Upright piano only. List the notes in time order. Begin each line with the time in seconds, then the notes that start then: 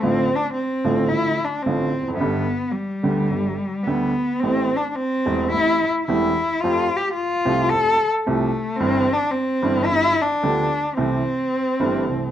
0.03 A1 A2 D3 F3 A3 F4
0.84 A1 A2 D3 F3 A3 F4
1.12 A1 A2 D3 F3 A3 F4
1.66 A1 A2 D3 F3 A3 F4
2.01 E2
2.08 F2
2.14 F#2
2.20 G1 G2 D3 G3 B3 G4
3.03 D2 D3 G3 B3 G4
3.30 G1 G2 D3 G3 B3 G4
3.87 D2 D3 G3 B3 G4
4.43 A1 A2 E3 A3 C4 G4
5.26 E1 E2 E3 A3 C4 G4
5.54 A1 A2 E3 A3 C4 G4
6.08 E1 E2 E3 A3 C4 G4
6.64 F2 F3 A3 C4 G4
7.45 C2 C3 F3 A3 C4 G4
7.72 F2 F3 A3 C4 G4
8.26 C2 C3 F3 A3 C4 G4
8.80 G1 G2 E3 G3 C4 G4
9.62 G1 G2 E3 G3 C4 G4
9.89 G1 G2 F3 B3 D4
10.43 D2 D3 F3 B3 D4 G4
10.97 C2 C3 E3 A3 C4 G4
11.80 G1 G2 E3 A3 C4 G4
12.08 C2 C3 E3 A3 C4 G4